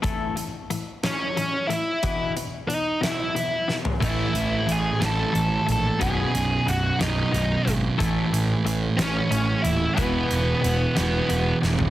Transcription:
<<
  \new Staff \with { instrumentName = "Lead electric guitar" } { \time 6/8 \key a \lydian \tempo 4. = 60 r4. cis'4 e'8~ | e'8 r8 dis'8 e'4 r8 | e'4 gis'8 a'4 a'8 | gis'4 fis'8 dis'4 r8 |
r4. cis'4 e'8 | b2~ b8 r8 | }
  \new Staff \with { instrumentName = "Distorted electric guitar" } { \clef bass \time 6/8 \key a \lydian r2. | r2. | <a, e a>4. <a, e a>4. | <b,, fis, b,>4. <b,, fis, b,>4. |
<a, e a>4. <a, e a>4. | <e, b, e>4. <e, b, e>4. | }
  \new Staff \with { instrumentName = "Clean electric guitar" } { \clef bass \time 6/8 \key a \lydian <a, e a>8 <a, e>8 <a, e>8 <a, e>8 <a, e>8 <a, e>8 | <e, b, e>8 <e, b,>8 <e, b,>8 <e, b,>8 <e, b,>8 <e, b,>8 | <a, e a>8 <a, e>8 <a, e>8 <a, e>8 <a, e>8 <a, e>8 | <b,, fis, b,>8 <b,, fis,>8 <b,, fis,>8 <b,, fis,>8 <b,, fis,>8 <b,, fis,>8 |
<a, e a>8 <a, e>8 <a, e>8 <a, e>8 <a, e>8 <a, e>8 | <e, b, e>8 <e, b,>8 <e, b,>8 <e, b,>8 <e, b,>8 <e, b,>8 | }
  \new Staff \with { instrumentName = "Picked electric bass" } { \clef bass \time 6/8 \key a \lydian r2. | r2. | a,,8 a,,8 a,,8 a,,8 a,,8 ais,,8 | b,,,8 b,,,8 b,,,8 b,,,8 b,,,8 gis,,8 |
a,,8 a,,8 a,,8 a,,8 a,,8 dis,,8 | e,,8 e,,8 e,,8 e,,8 e,,8 eis,,8 | }
  \new DrumStaff \with { instrumentName = "Drums" } \drummode { \time 6/8 <hh bd>8 hh8 hh8 <hh sn>8 hh8 hh8 | <hh bd>8 hh8 hh8 <hh sn>8 hh8 sn16 tomfh16 | <cymc hh bd>8 hh8 hh8 <hh sn>8 hh8 hh8 | <hh bd>8 hh8 hh8 <hh sn>8 hh8 hh8 |
<hh bd>8 hh8 hh8 <hh sn>8 hh8 hh8 | <hh bd>8 hh8 hh8 <hh sn>8 hh8 sn16 tomfh16 | }
>>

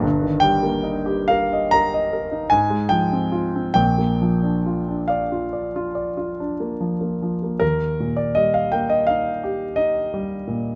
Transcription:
\new Staff \with { instrumentName = "Grand piano" } { \time 9/8 \key ees \major \tempo 4. = 49 << { r8 g''4 f''8 bes''4 aes''8 g''4 | g''4. f''4. r4. | bes'8. d''16 ees''16 f''16 g''16 ees''16 f''4 ees''4. | } \\ { <g,, g,>16 ees16 g16 bes16 ees'16 g'16 bes'16 ees''16 bes'16 ees''16 bes'16 ees'16 aes,16 aes16 f16 c'16 f'16 c'16 | <bes,, bes,>16 bes16 f16 d'16 f'16 d'16 d''16 f'16 d''16 f'16 d''16 f'16 d'16 bes16 f16 bes16 f16 bes16 | ees,8 bes,8 g8 bes8 ees'8 g'8 ees'8 g8 bes,8 | } >> }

